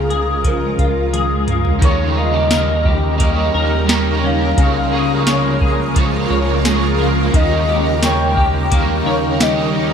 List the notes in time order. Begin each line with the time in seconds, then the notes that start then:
Already playing: C#2 C#3 G#3 A#3 F4 G#4 A#4
0.10 G#4, closed hi-hat
0.44 F3 A#4, kick, closed hi-hat
0.79 C#2 F4, kick, closed hi-hat
1.13 G#4, closed hi-hat, high tom
1.47 A#3, closed hi-hat, mid tom
1.65 floor tom
1.79 D#2 C#3 D#3 G3 A#3 D#4 A#4, kick, closed hi-hat
1.84 D#4 G4 C#5
2.17 F4 D#5
2.34 G4
2.51 A#4, snare, closed hi-hat, tambourine
2.85 G4, kick
3.18 A#3 D#4 G4 D#5, kick, closed hi-hat
3.23 C#5
3.54 D#2 A#4
3.87 A#3 D#4 G4, snare, closed hi-hat, tambourine
3.91 G4 C#5
4.24 C#4 F5
4.57 C#2 C#3 F3 G#3 A#3 F4 G#4 C#5, kick, closed hi-hat
4.91 A#3 G#4 C#5
4.97 F3
5.27 C#5, snare, closed hi-hat, tambourine
5.61 G#4, kick
5.95 F3 A#3 G#4, kick, closed hi-hat
6.00 C#5
6.30 C#2 C#5
6.64 F3 A#3 G#4, snare, closed hi-hat, tambourine
6.69 C#5
6.99 A#3
7.31 D#2 D#3 G3 D#4, kick, closed hi-hat
7.36 A#3 D#4 G4 D#5
7.40 C#5
7.69 G4
8.03 C#5 G5, snare, closed hi-hat, tambourine
8.37 G4, kick
8.70 A#3 D#4 G4 F5, kick, closed hi-hat
8.76 C#5
9.06 D#2 C#5
9.39 A#3 D#4 G4 D#5, snare, closed hi-hat, tambourine
9.44 C#5
9.75 D#4